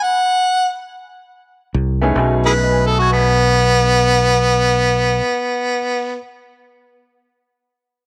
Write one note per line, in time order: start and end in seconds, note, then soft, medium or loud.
0.03 0.80 F#5 medium
1.74 2.14 C2 medium
2.02 2.14 A3 medium
2.02 2.14 B3 medium
2.02 2.15 C#4 medium
2.02 2.15 D#4 medium
2.02 2.15 G#4 medium
2.15 5.20 B1 medium
2.15 5.23 B2 medium
2.15 5.24 F#3 medium
2.15 5.24 A3 medium
2.15 5.25 C#4 medium
2.15 5.26 D#4 medium
2.15 5.26 G#4 medium
2.46 2.54 E4 medium
2.46 2.53 G#4 medium
2.46 2.88 B4 medium
2.56 5.61 B4 soft
2.64 5.68 D#5 soft
2.72 5.76 G#5 soft
2.81 5.85 B5 soft
2.87 3.00 A4 medium
2.91 5.95 D#6 soft
2.99 3.14 F#4 medium
2.99 6.06 G#6 soft
3.12 6.15 B3 medium
3.12 6.18 B6 soft